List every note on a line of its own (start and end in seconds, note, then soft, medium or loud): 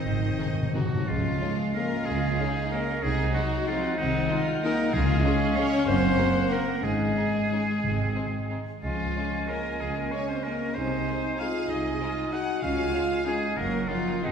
0.00 0.33 G#1 medium
0.00 0.73 D#3 soft
0.00 0.89 D#3 soft
0.00 0.93 D#3 medium
0.00 0.93 C4 medium
0.00 0.71 D#4 medium
0.00 0.82 C5 soft
0.00 0.76 D#5 medium
0.05 0.11 G#2 soft
0.12 0.19 G#2 medium
0.20 0.27 G#2 medium
0.28 0.35 G#2 medium
0.36 0.44 G#2 medium
0.36 0.46 D#3 soft
0.36 0.47 C4 soft
0.36 0.47 D#4 soft
0.36 0.47 G#4 soft
0.46 0.53 G#2 medium
0.55 0.61 G#2 medium
0.62 0.69 G#2 medium
0.71 0.78 G#2 medium
0.71 0.82 D#3 soft
0.71 0.82 C4 soft
0.71 1.06 F#4 medium
0.75 1.07 F#3 medium
0.75 0.83 D#4 soft
0.75 1.09 F#4 medium
0.75 0.83 G#4 soft
0.79 0.85 G#2 medium
0.86 0.93 G#2 medium
0.95 1.02 G#2 medium
1.07 1.36 C#2 medium
1.07 1.36 C#3 medium
1.07 1.75 F3 medium
1.07 2.99 G#3 medium
1.07 2.99 C#4 medium
1.07 1.75 F4 medium
1.07 1.58 F4 medium
1.07 3.05 F5 medium
1.41 1.73 G#3 medium
1.41 1.50 G#3 soft
1.41 1.50 C#4 medium
1.74 1.83 G#3 soft
1.74 2.06 A#3 medium
1.74 1.83 C#4 soft
1.74 2.39 F4 medium
1.74 2.06 A#4 medium
1.74 2.07 A#4 medium
2.05 2.33 C#2 medium
2.05 2.34 C#3 medium
2.05 2.71 G#3 medium
2.05 2.71 G#4 medium
2.05 2.72 G#4 medium
2.39 2.47 G#3 medium
2.39 2.47 C#4 medium
2.39 2.73 D#4 medium
2.70 2.80 G#3 soft
2.70 3.02 A#3 medium
2.70 2.80 C#4 soft
2.70 3.03 C#4 medium
2.70 3.04 A#4 medium
2.70 3.03 A#4 medium
3.02 3.29 C2 medium
3.02 3.29 C3 medium
3.02 3.34 G#3 medium
3.02 4.90 G#3 medium
3.02 4.96 D#4 medium
3.02 3.68 D#4 medium
3.02 3.33 G#4 medium
3.02 3.34 G#4 medium
3.02 4.96 F#5 medium
3.32 3.66 F#3 medium
3.32 3.43 G#3 medium
3.32 3.43 D#4 medium
3.32 3.67 F#4 medium
3.66 3.99 F3 medium
3.66 3.75 G#3 soft
3.66 3.98 C4 medium
3.66 3.75 D#4 medium
3.66 3.98 F4 medium
3.66 3.99 F4 medium
3.98 4.25 C2 medium
3.98 4.25 C3 medium
3.98 4.45 D#3 medium
3.98 4.30 C4 medium
3.98 4.47 D#4 medium
3.98 4.46 D#4 medium
4.29 4.38 G#3 medium
4.29 4.37 D#4 medium
4.29 4.63 F4 medium
4.62 4.72 G#3 medium
4.62 4.91 A#3 medium
4.62 4.93 D#4 medium
4.62 4.72 D#4 medium
4.62 4.91 A#4 medium
4.62 4.95 A#4 loud
4.92 5.19 C#2 medium
4.92 5.37 C#3 medium
4.92 5.19 C#3 medium
4.92 5.56 G#3 medium
4.92 5.88 G#3 medium
4.92 6.81 C#4 medium
4.92 5.25 F4 medium
4.92 5.58 G#4 medium
4.92 5.56 G#4 medium
4.92 5.87 F5 medium
5.24 5.33 G#3 medium
5.24 6.18 C#4 medium
5.24 5.33 F4 medium
5.56 5.66 G#3 medium
5.56 5.86 C#4 medium
5.56 5.65 F4 medium
5.56 5.87 C#5 loud
5.56 5.87 C#5 medium
5.86 6.13 F#1 medium
5.86 6.13 F#2 medium
5.86 6.82 A#3 medium
5.86 6.50 C4 medium
5.86 6.50 C5 medium
5.86 6.54 C5 loud
5.86 6.86 F#5 medium
6.18 6.27 A#3 medium
6.18 6.83 A#3 medium
6.18 6.26 F#4 medium
6.49 6.82 A#3 medium
6.49 6.59 A#3 soft
6.49 6.59 F#4 soft
6.49 6.82 A#4 medium
6.49 6.85 A#4 medium
6.81 7.11 G#1 medium
6.81 7.30 G#2 medium
6.81 7.10 G#2 medium
6.81 8.67 G#3 medium
6.81 8.64 G#3 medium
6.81 7.53 C#4 medium
6.81 8.66 G#4 medium
6.81 8.67 G#4 medium
6.81 8.52 G#5 medium
7.16 7.24 C#4 soft
7.16 7.25 D#4 soft
7.51 7.59 C#4 soft
7.51 7.60 D#4 soft
7.84 8.10 G#1 soft
7.84 8.10 G#2 medium
7.84 8.30 G#2 medium
7.84 8.63 C4 soft
8.16 8.24 C4 soft
8.16 8.24 D#4 soft
8.50 8.59 C4 soft
8.50 8.58 D#4 soft
8.81 9.10 C#2 medium
8.81 9.10 C#3 medium
8.81 9.45 F3 medium
8.81 10.71 G#3 medium
8.81 10.71 C#4 medium
8.81 9.44 F4 medium
8.81 9.50 F4 medium
8.81 10.71 G#5 medium
9.16 9.24 G#3 soft
9.16 9.47 C#4 medium
9.16 9.24 C#4 soft
9.48 9.57 G#3 soft
9.48 9.81 A#3 medium
9.48 9.57 C#4 soft
9.48 10.13 F4 medium
9.48 9.82 A#4 medium
9.48 9.81 A#4 medium
9.81 10.07 C#2 medium
9.81 10.07 C#3 medium
9.81 9.96 G#3 medium
9.81 9.96 G#4 medium
9.97 10.12 A#3 medium
9.97 10.13 A#4 medium
10.12 10.20 G#3 soft
10.12 10.74 C#4 medium
10.12 10.20 C#4 soft
10.12 10.29 C#4 medium
10.12 10.28 C#5 medium
10.12 10.29 C#5 medium
10.28 10.44 C4 medium
10.28 10.45 C5 medium
10.43 10.53 G#3 soft
10.43 10.74 A#3 medium
10.43 10.54 C#4 soft
10.43 10.76 A#4 medium
10.74 11.00 C2 medium
10.74 11.00 C3 medium
10.74 12.60 G#3 soft
10.74 11.39 C4 medium
10.74 11.05 D#4 medium
10.74 12.60 D#4 medium
10.74 11.41 C5 medium
10.74 11.39 C5 medium
10.74 12.60 G#5 medium
11.06 11.14 G#3 soft
11.06 11.14 D#4 soft
11.06 11.38 D#4 medium
11.38 11.47 G#3 soft
11.38 11.47 D#4 soft
11.38 11.69 F4 medium
11.38 11.98 G#4 medium
11.38 11.68 F5 medium
11.38 11.71 F5 medium
11.68 11.94 C2 medium
11.68 11.95 C3 medium
11.68 12.31 D#4 medium
11.68 12.32 D#5 medium
11.68 12.34 D#5 medium
12.00 12.08 G#3 soft
12.00 12.08 D#4 soft
12.00 12.32 F4 medium
12.31 12.41 G#3 soft
12.31 12.63 D#4 medium
12.31 12.41 D#4 soft
12.31 12.62 F#4 medium
12.31 12.62 F#5 medium
12.61 12.88 C#2 medium
12.61 13.06 C#3 medium
12.61 12.89 C#3 medium
12.61 13.22 G#3 medium
12.61 12.94 C#4 medium
12.61 13.23 C#4 medium
12.61 13.26 F4 medium
12.61 13.24 F5 medium
12.61 13.25 F5 medium
12.61 13.22 G#5 medium
12.93 13.02 G#3 medium
12.93 13.02 C#4 soft
12.93 13.25 F4 medium
13.25 13.56 G#3 medium
13.25 13.34 G#3 soft
13.25 13.57 G#3 medium
13.25 13.56 C#4 medium
13.25 13.34 C#4 soft
13.25 13.57 D#4 medium
13.25 13.57 G#4 medium
13.25 13.59 G#4 medium
13.25 13.59 G#5 medium
13.56 13.83 F#1 medium
13.56 13.83 F#2 medium
13.56 13.88 A#3 medium
13.56 14.22 A#3 medium
13.56 14.27 C#4 medium
13.56 13.89 C#4 medium
13.56 13.90 A#4 medium
13.56 13.89 A#4 medium
13.56 14.22 F#5 medium
13.88 14.23 F3 medium
13.88 13.97 A#3 soft
13.88 13.97 C#4 soft
13.88 14.32 D#4 medium
13.88 14.26 F4 medium
13.88 14.23 F4 medium
14.23 14.32 G#1 soft
14.23 14.32 G#2 medium
14.23 14.32 D#3 medium
14.23 14.32 G#3 soft
14.23 14.32 C4 soft
14.23 14.32 D#4 medium
14.23 14.32 F#5 soft